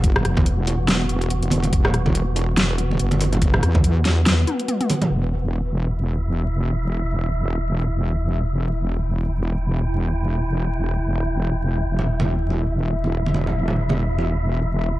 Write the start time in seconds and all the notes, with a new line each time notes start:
Already playing: F#1 B3 F#4
0.04 kick, closed hi-hat
0.16 cross-stick, low conga
0.25 E1, cross-stick, closed hi-hat
0.37 kick, high bongo, high conga, low conga
0.46 closed hi-hat
0.67 open hi-hat, high bongo
0.88 snare, closed hi-hat
1.09 closed hi-hat
1.22 closed hi-hat
1.30 closed hi-hat
1.43 closed hi-hat
1.51 E1, open hi-hat, high conga
1.63 closed hi-hat, high conga
1.73 E1, kick, closed hi-hat
1.85 cross-stick, low conga
1.94 cross-stick, closed hi-hat
2.06 kick, high conga, low conga
2.15 closed hi-hat
2.36 open hi-hat, high bongo
2.57 snare, closed hi-hat
2.78 closed hi-hat, high bongo
2.91 high conga
2.99 F#1, closed hi-hat
3.11 closed hi-hat, high conga
3.21 open hi-hat, high bongo, high conga
3.33 closed hi-hat, low conga
3.42 kick, closed hi-hat
3.54 cross-stick, low conga
3.63 E2, cross-stick, closed hi-hat
3.75 kick, high bongo, high conga, low conga
3.84 closed hi-hat
4.05 snare, open hi-hat, high bongo
4.26 snare, closed hi-hat
4.47 closed hi-hat, high tom
4.59 closed hi-hat
4.68 closed hi-hat, mid tom
4.81 closed hi-hat, mid tom
4.90 open hi-hat, high conga
5.01 closed hi-hat, mid tom, high conga, low conga
5.11 E1 E4 E5
8.49 G5
11.87 E1 E5
11.99 low conga
12.20 high conga, low conga
12.50 high bongo
13.04 high conga
13.26 high conga
13.34 high bongo, high conga
13.47 low conga
13.68 low conga
13.89 high conga, low conga
14.19 high bongo